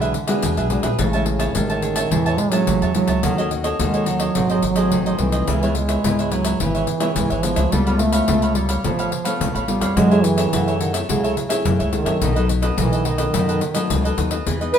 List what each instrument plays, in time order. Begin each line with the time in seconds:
Already playing: upright bass B1, duduk D3, nylon-string guitar E3 G#3 D4 F#4
0.01 cavaquinho G#4 B4 E5, pandeiro
0.14 muted cavaquinho stroke, pandeiro
0.27 nylon-string guitar G#3 D4 F#4, cavaquinho G#4 B4 E5, pandeiro
0.43 upright bass E2, nylon-string guitar B2, pandeiro
0.57 upright bass B1, cavaquinho G#4 B4 E5, pandeiro
0.70 nylon-string guitar G#3 D4 F#4, pandeiro
0.83 upright bass A#1, cavaquinho G#4 B4 E5, pandeiro
0.99 upright bass A1, nylon-string guitar A2 G#3 C#4 E4, duduk C#3, cavaquinho G#4 C#5 E5 A5, pandeiro
1.13 nylon-string guitar G#3 C#4 E4, cavaquinho C#5 E5 A5, pandeiro
1.26 duduk C#3, muted cavaquinho stroke, pandeiro
1.39 cavaquinho C#5 E5 A5, pandeiro
1.55 upright bass A1, duduk D#3, nylon-string guitar G#3 C#4, cavaquinho G#4 C#5 E5 A5, pandeiro
1.70 cavaquinho C#5 E5 A5, pandeiro
1.82 cavaquinho G#4 C#5 E5 A5, pandeiro
1.96 cavaquinho C#5 E5 A5, pandeiro
2.11 upright bass E2, nylon-string guitar A2 G#3 C#4 E4, duduk E3, cavaquinho G#4 C#5 E5 A5, pandeiro
2.26 cavaquinho C#5 E5 A5, pandeiro
2.38 duduk G#3, muted cavaquinho stroke, pandeiro
2.51 duduk F#3, nylon-string guitar G#3 C#4 E4, cavaquinho C#5 E5 A5, pandeiro
2.67 upright bass A1, nylon-string guitar E3, pandeiro
2.82 upright bass E2, cavaquinho C#5 E5 A5, pandeiro
2.95 duduk F#3, nylon-string guitar G#3 C#4 E4, pandeiro
3.08 upright bass C#2, cavaquinho C#5 E5 A5, pandeiro
3.23 upright bass D#2, nylon-string guitar D#3 A3 C#4 F#4, cavaquinho F#4 A4 C#5 D#5, pandeiro
3.38 nylon-string guitar A3 C#4 F#4, cavaquinho A4 C#5 D#5, pandeiro
3.51 muted cavaquinho stroke, pandeiro
3.64 cavaquinho A4 C#5 D#5, pandeiro
3.79 upright bass D#2, nylon-string guitar D#3 A3 C#4 F#4, duduk G#3, cavaquinho F#4 A4 C#5 D#5, pandeiro
3.94 cavaquinho A4 C#5 D#5, pandeiro
4.06 duduk F#3, cavaquinho F#4 A4 C#5 D#5, pandeiro
4.20 cavaquinho A4 C#5 D#5, pandeiro
4.35 upright bass G#1, nylon-string guitar G#2 F#3 A3 C4, cavaquinho F#4 G#4 C5 D#5, pandeiro
4.50 cavaquinho G#4 C5 D#5, pandeiro
4.62 upright bass G#1, muted cavaquinho stroke, pandeiro
4.76 nylon-string guitar F#3 A3 C4, cavaquinho G#4 C5 D#5, pandeiro
4.92 upright bass A1, nylon-string guitar D#3, pandeiro
5.06 cavaquinho G#4 C5 D#5, pandeiro
5.18 upright bass C2, duduk E3, nylon-string guitar F#3 A3 C4, pandeiro
5.32 cavaquinho G#4 C5 D#5, pandeiro
5.47 upright bass C#2, nylon-string guitar C#3 G#3 B3 E4, cavaquinho E4 B4 C#5 E5, pandeiro
5.63 nylon-string guitar G#3 B3 E4, cavaquinho B4 C#5 E5, pandeiro
5.75 duduk G#3, muted cavaquinho stroke, pandeiro
5.88 cavaquinho B4 C#5 E5, pandeiro
6.04 upright bass C#2, nylon-string guitar G#2 G#3 B3 E4, cavaquinho E4 B4 C#5 E5, pandeiro
6.19 cavaquinho B4 C#5 E5, pandeiro
6.31 duduk F#3, cavaquinho E4 B4 C#5 E5, pandeiro
6.45 cavaquinho B4 C#5 E5, pandeiro
6.60 upright bass G#1, nylon-string guitar C#3 G#3 B3 E4, duduk E3, cavaquinho E4 B4 C#5 E5, pandeiro
6.75 cavaquinho B4 C#5 E5, pandeiro
6.87 muted cavaquinho stroke, pandeiro
7.00 nylon-string guitar G#3 B3 E4, cavaquinho B4 C#5 E5, pandeiro
7.16 upright bass C#2, nylon-string guitar G#2, pandeiro
7.30 upright bass G#1, cavaquinho B4 C#5 E5, pandeiro
7.43 duduk F3, nylon-string guitar G#3 B3 E4, pandeiro
7.56 upright bass C#2, cavaquinho B4 C#5 E5, pandeiro
7.72 upright bass C#2, nylon-string guitar C#3 A3 B3 F4, duduk G3, cavaquinho A4 C#5 F5 B5, pandeiro
7.86 nylon-string guitar A3 B3 F4, cavaquinho C#5 F5 B5, pandeiro
7.99 duduk A3, muted cavaquinho stroke, pandeiro
8.12 cavaquinho C#5 F5 B5, pandeiro
8.28 upright bass C#2, nylon-string guitar C#3 A3 B3 F4, cavaquinho A4 C#5 F5 B5, pandeiro
8.42 cavaquinho C#5 F5 B5, pandeiro
8.55 duduk G3, cavaquinho A4 C#5 F5 B5, pandeiro
8.69 cavaquinho C#5 F5 B5, pandeiro
8.84 upright bass A1, nylon-string guitar C#3 A3 B3 F4, duduk F3, cavaquinho A4 C#5 F5 B5, pandeiro
8.99 cavaquinho C#5 F5 B5, pandeiro
9.12 muted cavaquinho stroke, pandeiro
9.25 nylon-string guitar A3 B3 F4, cavaquinho C#5 F5 B5, pandeiro
9.40 upright bass C#2, nylon-string guitar C#3, pandeiro
9.55 upright bass A1, cavaquinho C#5 F5 B5, pandeiro
9.68 duduk G3, nylon-string guitar A3 B3 F4, pandeiro
9.81 upright bass F2, cavaquinho C#5 F5 B5, pandeiro
9.96 upright bass F#2, nylon-string guitar F#3 A3 E4 G#4, duduk G#3, cavaquinho F#4 A4 C#5 E5, pandeiro
10.11 nylon-string guitar A3 E4 G#4, cavaquinho A4 C#5 E5, pandeiro
10.23 duduk E3, muted cavaquinho stroke, pandeiro
10.37 cavaquinho A4 C#5 E5, pandeiro
10.53 upright bass F#2, nylon-string guitar C#3 A3 E4 G#4, cavaquinho F#4 A4 C#5 E5, pandeiro
10.67 cavaquinho A4 C#5 E5, pandeiro
10.80 duduk D#3, cavaquinho F#4 A4 C#5 E5, pandeiro
10.93 cavaquinho A4 C#5 E5, pandeiro
11.09 upright bass C#2, duduk C#3, nylon-string guitar F#3 A3 E4 G#4, cavaquinho F#4 A4 C#5 E5, pandeiro
11.24 cavaquinho A4 C#5 E5, pandeiro
11.36 muted cavaquinho stroke, pandeiro
11.49 nylon-string guitar A3 E4 G#4, cavaquinho A4 C#5 E5, pandeiro
11.65 upright bass F#2, nylon-string guitar C#3, pandeiro
11.79 upright bass C#2, cavaquinho A4 C#5 E5, pandeiro
11.93 duduk D#3, nylon-string guitar A3 E4 G#4, pandeiro
12.05 upright bass F#2, cavaquinho A4 C#5 E5, pandeiro
12.21 upright bass B1, nylon-string guitar B2 F#3 A3 D#4, cavaquinho D#4 A4 B4 D#5, pandeiro
12.35 nylon-string guitar F#3 A3 D#4, cavaquinho A4 B4 D#5, pandeiro
12.49 muted cavaquinho stroke, pandeiro
12.62 cavaquinho A4 B4 D#5, pandeiro
12.77 upright bass B1, nylon-string guitar F#2 F#3 A3 D#4, duduk E3, cavaquinho D#4 A4 B4 D#5, pandeiro
12.92 cavaquinho A4 B4 D#5, pandeiro
13.05 duduk D#3, cavaquinho D#4 A4 B4 D#5, pandeiro
13.18 cavaquinho A4 B4 D#5, pandeiro
13.33 upright bass F#2, nylon-string guitar B2 F#3 A3 D#4, cavaquinho D#4 A4 B4 D#5, pandeiro
13.48 cavaquinho A4 B4 D#5, pandeiro
13.61 muted cavaquinho stroke, pandeiro
13.74 nylon-string guitar F#3 A3 D#4, cavaquinho A4 B4 D#5, pandeiro
13.90 upright bass C#2, nylon-string guitar F#2, pandeiro
14.04 cavaquinho A4 B4 D#5, pandeiro
14.17 upright bass D#2, nylon-string guitar F#3 A3 D#4, pandeiro
14.31 cavaquinho A4 B4 D#5, pandeiro
14.46 upright bass E2, nylon-string guitar E3 B3 D#4 G#4, cavaquinho E4 G#4 B4 D#5, pandeiro
14.61 nylon-string guitar B3 D#4 G#4, cavaquinho G#4 B4 D#5, pandeiro
14.73 accordion B4, muted cavaquinho stroke, pandeiro